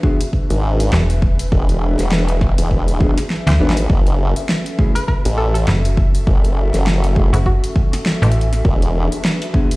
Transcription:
Already playing: analog synth pad D4 F#4 G#4 B4 E5
0.03 clean electric guitar B3 D4 F#4 G#4, kick
0.21 closed hi-hat
0.33 kick
0.50 wobble bass G#1, closed hi-hat
0.80 closed hi-hat
0.92 fm bass E1, snare
1.10 closed hi-hat
1.22 kick
1.39 closed hi-hat
1.52 wobble bass E1, kick
1.69 closed hi-hat
1.99 wobble bass E1, snare, closed hi-hat
2.12 snare
2.29 closed hi-hat
2.41 kick, snare
2.58 wobble bass E1, closed hi-hat
2.71 kick
2.88 closed hi-hat
3.00 clean electric guitar B3 D4 F#4 G#4, kick
3.18 snare, closed hi-hat
3.30 snare
3.47 fm bass D2, snare, closed hi-hat
3.60 wobble bass G#1, clean electric guitar B3 D4 F#4 B4
3.70 snare
3.77 closed hi-hat
3.90 wobble bass F#1, analog synth pad C#4, kick
4.07 closed hi-hat
4.15 analog synth pad F#4
4.27 analog synth pad A4
4.36 closed hi-hat
4.49 snare
4.66 closed hi-hat
4.79 clean electric guitar A3 C#4 E4 G#4, kick
4.95 synth pluck B4, closed hi-hat
5.08 synth pluck B4, kick
5.25 wobble bass A1, closed hi-hat
5.38 synth pluck A4
5.54 synth pluck A4, closed hi-hat
5.68 fm bass F#1, snare
5.85 closed hi-hat
5.97 kick
6.15 closed hi-hat
6.27 wobble bass F#1, kick
6.45 closed hi-hat
6.73 wobble bass F#1, snare, closed hi-hat
6.87 snare
7.04 closed hi-hat
7.16 clean electric guitar A3 C#4 E4 G#4, kick
7.33 fm bass F#1, synth pluck F#4, closed hi-hat
7.46 synth pluck F#4, kick
7.64 closed hi-hat
7.76 kick
7.93 snare, closed hi-hat
8.06 snare
8.22 fm bass A1, closed hi-hat
8.32 closed hi-hat
8.41 closed hi-hat
8.53 snare, closed hi-hat
8.65 wobble bass E1, analog synth pad D4, kick
8.82 closed hi-hat
8.87 analog synth pad G#4
8.93 analog synth pad B4
9.12 closed hi-hat
9.25 snare
9.42 closed hi-hat
9.53 clean electric guitar B3 D4 F#4 G#4, kick
9.71 closed hi-hat

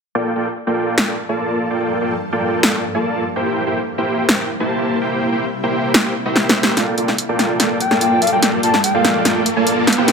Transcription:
0.15 ambient pad G2 F3 A#3 A4, supersaw synth A#3 F4 A4 D5 G5
0.36 supersaw synth A#3 F4 A4 D5 G5
0.67 supersaw synth A#3 F4 A4 D5 G5
0.98 supersaw synth A#3 F4 A4 D5 G5, finger snap, snare
1.29 supersaw synth A#3 F4 A4 D5 A5
1.70 supersaw synth A#3 F4 A4 D5 G5
1.80 supersaw synth A#3 F4 A4 D5 G5
2.01 supersaw synth A#3 F4 A4 D5 G5
2.32 supersaw synth A#3 F4 A4 D5 G5
2.63 supersaw synth A#3 F4 A4 D5 G5, finger snap, snare
2.95 supersaw synth A#3 F4 A4 D5 A5
3.25 ambient pad C3 G3 E4
3.36 supersaw synth A#3 E4 G4 C5 G5
3.46 supersaw synth A#3 E4 G4 C5 G5
3.67 supersaw synth A#3 E4 G4 C5 G5
3.98 supersaw synth A#3 E4 G4 C5 G5
4.29 supersaw synth A#3 E4 G4 C5 G5, finger snap, snare
4.60 supersaw synth A#3 E4 G4 C5 A5
5.01 supersaw synth A#3 E4 G4 C5 G5
5.12 supersaw synth A#3 E4 G4 C5 G5
5.32 supersaw synth A#3 E4 G4 C5 G5
5.63 supersaw synth A#3 E4 G4 C5 G5
5.94 supersaw synth A#3 E4 G4 C5 G5, finger snap, snare
6.26 supersaw synth A#3 E4 G4 C5 E5
6.36 snare
6.49 snare
6.56 supersaw synth A#3 E4 G4 C5 E5
6.63 snare
6.77 ambient pad G2 F3 A#3 A4, supersaw synth A#3 F4 A4 D5 G5, snare, closed hi-hat, riser
6.98 supersaw synth A#3 F4 A4 D5 G5, closed hi-hat
7.08 snare
7.18 closed hi-hat
7.29 supersaw synth A#3 F4 A4 D5 G5
7.39 snare, closed hi-hat
7.60 supersaw synth A#3 F4 A4 D5 G5, snare, closed hi-hat
7.80 soft synth lead G5, closed hi-hat
7.91 supersaw synth A#3 F4 A4 D5 A5, snare
8.01 soft synth lead G5, closed hi-hat
8.22 soft synth lead F5, closed hi-hat
8.27 closed hi-hat
8.32 supersaw synth A#3 F4 A4 D5 G5, soft synth lead G5
8.43 supersaw synth A#3 F4 A4 D5 G5, soft synth lead G5, snare, closed hi-hat
8.63 supersaw synth A#3 F4 A4 D5 G5, soft synth lead A5, closed hi-hat
8.74 snare
8.84 soft synth lead G5, closed hi-hat
8.94 supersaw synth A#3 F4 A4 D5 G5, soft synth lead F5
9.05 snare, closed hi-hat
9.25 supersaw synth A#3 F4 A4 D5 G5, snare, closed hi-hat
9.46 closed hi-hat
9.57 supersaw synth A#3 F4 A4 D5 A5
9.67 closed hi-hat
9.87 snare, closed hi-hat
9.93 closed hi-hat
9.98 supersaw synth A#3 E4 G4 C5 G5
10.08 supersaw synth A#3 E4 G4 C5 G5, snare, closed hi-hat

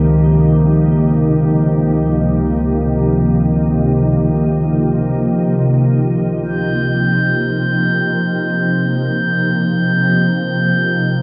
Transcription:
Already playing: ambient pad C#2 C3 F3 A#3 D#4 G4, synth drone D#3 A#3
6.42 glass harmonica G6

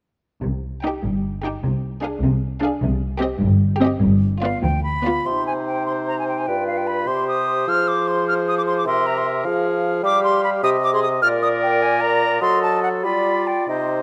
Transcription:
0.43 double bass section C2, cello section C3
0.83 viola section D#4, violin section G4 G5
1.04 double bass section G1, cello section G2
1.43 viola section D#4, violin section G4 G5
1.63 double bass section C2, cello section C3
2.02 viola section D4, violin section G#4 F5
2.22 double bass section C2, cello section C3
2.62 viola section D4, violin section G#4 F5
2.81 double bass section C2, cello section C3
3.21 viola section C4, violin section G4 D#5
3.41 double bass section G1, cello section G2
3.80 viola section C4, violin section G4 D#5
4.01 double bass section G1, cello section G2
4.41 viola section B3, violin section F4 D5, flute F5
4.62 cello section D2, double bass section D2, flute G5
4.84 flute B5
5.05 viola section B3, violin section F4 D5
5.26 bassoon C3, clarinet D#4, oboe C5, flute C6
5.47 flute G#5
5.67 flute G5
5.86 flute C6
6.08 flute A#5
6.19 flute G#5
6.28 flute G5
6.39 flute G#5
6.47 bassoon G2, clarinet F4, oboe B4, flute G5
6.67 flute F5
6.78 flute G5
6.87 flute B5
7.07 bassoon C3, clarinet G4, oboe C5, flute C6
7.28 flute D#6
7.67 bassoon F3, clarinet G#4, flute F6
7.88 flute D6
8.08 flute C6
8.28 flute F6
8.48 flute D#6
8.58 flute D6
8.67 flute C6
8.78 flute D6
8.86 bassoon C3, clarinet A#4, oboe E5, flute C6
9.07 flute A#5
9.18 flute C6
9.45 bassoon F3, clarinet G#4, oboe F5
10.03 bassoon G3, clarinet G4, oboe F5, flute D6
10.24 flute C6
10.44 flute B5
10.63 bassoon C3, clarinet G4, oboe D#5, flute D#6
10.84 flute D6
10.93 clarinet G#4, flute C6
11.03 flute D#6
11.22 bassoon A#2, clarinet A#4, oboe D5, flute F6
11.42 flute D#6
11.63 flute G5
11.82 flute G#5
12.01 flute A#5
12.42 bassoon F#3, clarinet A4, oboe D#5, flute C6
12.63 flute A5
12.83 flute F#5
13.03 bassoon G3, clarinet F4, oboe D5, flute B5
13.47 flute G5
13.68 bassoon C3, clarinet D#4, oboe C5, flute D#5

